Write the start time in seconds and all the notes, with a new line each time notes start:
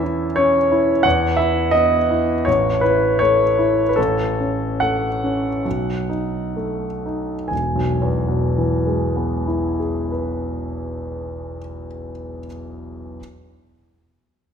Already playing: E2 E3 C#4 E4 A4 E5
0.03 E4
0.36 C#4 C#5
0.72 E4
1.03 E2 F#5
1.37 E4 E5
1.71 B3 D#5
2.11 E4
2.45 A1 C#5
2.81 E4 B4
3.19 A3 C#5
3.59 E4
3.89 B4
3.96 A1 A4
4.40 C#4
4.80 A3 F#5
5.24 C#4
5.65 B1
6.09 D#4
6.56 A3
7.06 D#4
7.48 E1 G#5
7.75 B1
8.02 E2
8.29 B2
8.58 E3
8.87 G#3
9.16 B3
9.47 E4
9.80 G#4
10.12 B4